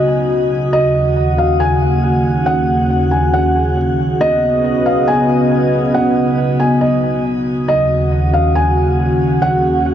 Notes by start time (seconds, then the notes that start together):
Already playing: C#3 B3 F#4 D#5
0.73 D#2 D#5 F#5
1.38 F5
1.60 G#5
2.46 F#5
3.11 G#5
3.34 F#5
4.20 C#3 B3 F#4 D#5
4.86 F5
5.08 G#5
5.94 F#5
6.60 G#5
6.81 D#5
7.68 D#2 C#3 D#5 F#5
8.34 F5
8.55 G#5
9.42 F#5